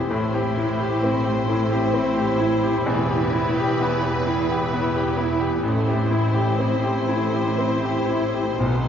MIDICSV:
0, 0, Header, 1, 8, 480
1, 0, Start_track
1, 0, Tempo, 911854
1, 60, Time_signature, 3, 2, 24, 8
1, 1500, Tempo, 931677
1, 3420, Tempo, 1022147
1, 4502, End_track
2, 0, Start_track
2, 0, Title_t, "Violin section"
2, 0, Program_c, 0, 48
2, 62, Note_on_c, 0, 72, 54
2, 1479, Note_off_c, 0, 72, 0
2, 1495, Note_on_c, 0, 71, 59
2, 2929, Note_off_c, 0, 71, 0
2, 2932, Note_on_c, 0, 72, 53
2, 4502, Note_off_c, 0, 72, 0
2, 4502, End_track
3, 0, Start_track
3, 0, Title_t, "Grand piano"
3, 0, Program_c, 1, 0
3, 0, Control_c, 1, 64, 127
3, 0, Note_on_c, 1, 60, 48
3, 0, Note_on_c, 1, 64, 51
3, 0, Note_on_c, 1, 67, 48
3, 55, Note_on_c, 1, 45, 64
3, 58, Note_off_c, 1, 67, 0
3, 68, Control_c, 1, 64, 0
3, 74, Note_off_c, 1, 60, 0
3, 74, Note_off_c, 1, 64, 0
3, 157, Control_c, 1, 64, 127
3, 179, Note_on_c, 1, 67, 51
3, 302, Note_on_c, 1, 64, 46
3, 372, Note_off_c, 1, 67, 0
3, 421, Note_on_c, 1, 67, 49
3, 494, Note_off_c, 1, 64, 0
3, 545, Note_on_c, 1, 60, 48
3, 613, Note_off_c, 1, 67, 0
3, 655, Note_on_c, 1, 67, 46
3, 735, Note_off_c, 1, 60, 0
3, 779, Note_on_c, 1, 64, 49
3, 849, Note_off_c, 1, 67, 0
3, 899, Note_on_c, 1, 67, 52
3, 970, Note_off_c, 1, 64, 0
3, 1021, Note_on_c, 1, 60, 53
3, 1089, Note_off_c, 1, 67, 0
3, 1144, Note_on_c, 1, 67, 49
3, 1210, Note_off_c, 1, 60, 0
3, 1262, Note_on_c, 1, 64, 48
3, 1332, Note_off_c, 1, 67, 0
3, 1387, Note_on_c, 1, 67, 47
3, 1453, Note_off_c, 1, 64, 0
3, 1476, Note_off_c, 1, 45, 0
3, 1504, Note_off_c, 1, 67, 0
3, 1507, Note_on_c, 1, 40, 60
3, 1509, Control_c, 1, 64, 0
3, 1598, Control_c, 1, 64, 127
3, 1629, Note_on_c, 1, 67, 52
3, 1747, Note_on_c, 1, 64, 51
3, 1818, Note_off_c, 1, 67, 0
3, 1877, Note_on_c, 1, 67, 55
3, 1937, Note_off_c, 1, 64, 0
3, 1990, Note_on_c, 1, 59, 51
3, 2062, Note_off_c, 1, 67, 0
3, 2108, Note_on_c, 1, 67, 49
3, 2179, Note_off_c, 1, 59, 0
3, 2229, Note_on_c, 1, 64, 50
3, 2297, Note_off_c, 1, 67, 0
3, 2353, Note_on_c, 1, 67, 48
3, 2416, Note_off_c, 1, 64, 0
3, 2469, Note_on_c, 1, 59, 51
3, 2537, Note_off_c, 1, 67, 0
3, 2590, Note_on_c, 1, 67, 51
3, 2653, Note_off_c, 1, 59, 0
3, 2696, Note_on_c, 1, 64, 49
3, 2772, Note_off_c, 1, 67, 0
3, 2812, Note_on_c, 1, 67, 46
3, 2884, Note_off_c, 1, 64, 0
3, 2914, Note_off_c, 1, 40, 0
3, 2930, Note_off_c, 1, 67, 0
3, 2934, Note_on_c, 1, 33, 59
3, 2940, Control_c, 1, 64, 0
3, 3032, Control_c, 1, 64, 127
3, 3057, Note_on_c, 1, 67, 49
3, 3178, Note_on_c, 1, 64, 50
3, 3247, Note_off_c, 1, 67, 0
3, 3294, Note_on_c, 1, 67, 50
3, 3371, Note_off_c, 1, 64, 0
3, 3425, Note_on_c, 1, 60, 46
3, 3488, Note_off_c, 1, 67, 0
3, 3542, Note_on_c, 1, 67, 47
3, 3608, Note_off_c, 1, 60, 0
3, 3660, Note_on_c, 1, 64, 49
3, 3726, Note_off_c, 1, 67, 0
3, 3780, Note_on_c, 1, 67, 44
3, 3845, Note_off_c, 1, 64, 0
3, 3893, Note_on_c, 1, 60, 48
3, 3964, Note_off_c, 1, 67, 0
3, 4013, Note_on_c, 1, 67, 42
3, 4081, Note_off_c, 1, 60, 0
3, 4128, Note_on_c, 1, 64, 44
3, 4202, Note_off_c, 1, 67, 0
3, 4251, Note_on_c, 1, 67, 40
3, 4323, Note_off_c, 1, 64, 0
3, 4355, Note_off_c, 1, 33, 0
3, 4370, Note_on_c, 1, 35, 48
3, 4374, Note_off_c, 1, 67, 0
3, 4382, Control_c, 1, 64, 0
3, 4476, Control_c, 1, 64, 127
3, 4502, Note_off_c, 1, 35, 0
3, 4502, End_track
4, 0, Start_track
4, 0, Title_t, "Viola section"
4, 0, Program_c, 2, 48
4, 65, Note_on_c, 2, 64, 55
4, 2913, Note_off_c, 2, 64, 0
4, 2930, Note_on_c, 2, 64, 54
4, 4353, Note_off_c, 2, 64, 0
4, 4373, Note_on_c, 2, 63, 41
4, 4502, Note_off_c, 2, 63, 0
4, 4502, End_track
5, 0, Start_track
5, 0, Title_t, "Violin section"
5, 0, Program_c, 3, 48
5, 0, Note_on_c, 3, 60, 46
5, 48, Note_on_c, 3, 57, 56
5, 58, Note_off_c, 3, 60, 0
5, 165, Note_off_c, 3, 57, 0
5, 172, Note_on_c, 3, 60, 49
5, 286, Note_on_c, 3, 64, 47
5, 297, Note_off_c, 3, 60, 0
5, 413, Note_off_c, 3, 64, 0
5, 421, Note_on_c, 3, 67, 51
5, 536, Note_on_c, 3, 64, 49
5, 541, Note_off_c, 3, 67, 0
5, 659, Note_off_c, 3, 64, 0
5, 659, Note_on_c, 3, 60, 48
5, 780, Note_off_c, 3, 60, 0
5, 781, Note_on_c, 3, 57, 47
5, 900, Note_off_c, 3, 57, 0
5, 904, Note_on_c, 3, 60, 52
5, 1015, Note_on_c, 3, 64, 49
5, 1021, Note_off_c, 3, 60, 0
5, 1129, Note_on_c, 3, 67, 48
5, 1135, Note_off_c, 3, 64, 0
5, 1245, Note_on_c, 3, 64, 48
5, 1252, Note_off_c, 3, 67, 0
5, 1372, Note_off_c, 3, 64, 0
5, 1372, Note_on_c, 3, 60, 53
5, 1489, Note_on_c, 3, 55, 56
5, 1497, Note_off_c, 3, 60, 0
5, 1606, Note_off_c, 3, 55, 0
5, 1619, Note_on_c, 3, 59, 49
5, 1735, Note_on_c, 3, 64, 54
5, 1740, Note_off_c, 3, 59, 0
5, 1848, Note_on_c, 3, 67, 47
5, 1859, Note_off_c, 3, 64, 0
5, 1974, Note_on_c, 3, 64, 53
5, 1976, Note_off_c, 3, 67, 0
5, 2098, Note_off_c, 3, 64, 0
5, 2104, Note_on_c, 3, 59, 47
5, 2221, Note_on_c, 3, 55, 50
5, 2223, Note_off_c, 3, 59, 0
5, 2341, Note_off_c, 3, 55, 0
5, 2341, Note_on_c, 3, 59, 49
5, 2460, Note_off_c, 3, 59, 0
5, 2462, Note_on_c, 3, 64, 49
5, 2579, Note_off_c, 3, 64, 0
5, 2586, Note_on_c, 3, 67, 48
5, 2700, Note_off_c, 3, 67, 0
5, 2702, Note_on_c, 3, 64, 47
5, 2816, Note_off_c, 3, 64, 0
5, 2822, Note_on_c, 3, 59, 50
5, 2935, Note_off_c, 3, 59, 0
5, 2948, Note_on_c, 3, 57, 58
5, 3051, Note_off_c, 3, 57, 0
5, 3067, Note_on_c, 3, 60, 51
5, 3178, Note_on_c, 3, 64, 51
5, 3179, Note_off_c, 3, 60, 0
5, 3290, Note_on_c, 3, 67, 47
5, 3296, Note_off_c, 3, 64, 0
5, 3416, Note_off_c, 3, 67, 0
5, 3420, Note_on_c, 3, 64, 47
5, 3530, Note_on_c, 3, 60, 46
5, 3535, Note_off_c, 3, 64, 0
5, 3645, Note_on_c, 3, 57, 43
5, 3649, Note_off_c, 3, 60, 0
5, 3766, Note_off_c, 3, 57, 0
5, 3766, Note_on_c, 3, 60, 42
5, 3877, Note_on_c, 3, 64, 43
5, 3886, Note_off_c, 3, 60, 0
5, 4001, Note_off_c, 3, 64, 0
5, 4005, Note_on_c, 3, 67, 42
5, 4125, Note_off_c, 3, 67, 0
5, 4129, Note_on_c, 3, 64, 41
5, 4248, Note_on_c, 3, 60, 41
5, 4249, Note_off_c, 3, 64, 0
5, 4371, Note_on_c, 3, 59, 50
5, 4372, Note_off_c, 3, 60, 0
5, 4488, Note_off_c, 3, 59, 0
5, 4502, End_track
6, 0, Start_track
6, 0, Title_t, "Timpani"
6, 0, Program_c, 4, 47
6, 4379, Note_on_c, 4, 47, 27
6, 4412, Note_off_c, 4, 47, 0
6, 4417, Note_on_c, 4, 47, 25
6, 4451, Note_off_c, 4, 47, 0
6, 4456, Note_on_c, 4, 47, 26
6, 4487, Note_off_c, 4, 47, 0
6, 4502, End_track
7, 0, Start_track
7, 0, Title_t, "Cello section"
7, 0, Program_c, 5, 48
7, 69, Note_on_c, 5, 45, 60
7, 1483, Note_off_c, 5, 45, 0
7, 1507, Note_on_c, 5, 40, 63
7, 2914, Note_off_c, 5, 40, 0
7, 2929, Note_on_c, 5, 45, 60
7, 4353, Note_off_c, 5, 45, 0
7, 4375, Note_on_c, 5, 47, 49
7, 4502, Note_off_c, 5, 47, 0
7, 4502, End_track
8, 0, Start_track
8, 0, Title_t, "Double bass section"
8, 0, Program_c, 6, 48
8, 65, Note_on_c, 6, 33, 53
8, 1481, Note_off_c, 6, 33, 0
8, 1498, Note_on_c, 6, 28, 61
8, 2910, Note_off_c, 6, 28, 0
8, 2932, Note_on_c, 6, 33, 57
8, 4354, Note_off_c, 6, 33, 0
8, 4371, Note_on_c, 6, 35, 50
8, 4502, Note_off_c, 6, 35, 0
8, 4502, End_track
0, 0, End_of_file